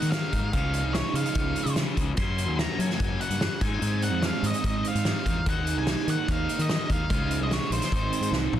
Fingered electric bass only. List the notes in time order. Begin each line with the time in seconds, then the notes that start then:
0.02 D#3
0.33 G#2
0.54 C#2
0.83 C2
1.13 C#3
1.35 C#2
1.65 C#3
1.97 C#2
2.17 F#2
2.48 D#2
2.79 F#3
3.00 F#2
3.30 G2
3.61 G#2
3.81 G#2
4.12 F2
4.42 G#2
4.64 G#2
4.95 G#2
5.25 E2
5.46 D#2
5.77 C2
6.07 D#3
6.28 D#2
6.59 D#3
6.90 D#2
7.10 C#2
7.40 C2
7.70 A#1
7.92 G#1
8.21 G#2
8.31 C2
8.52 A#1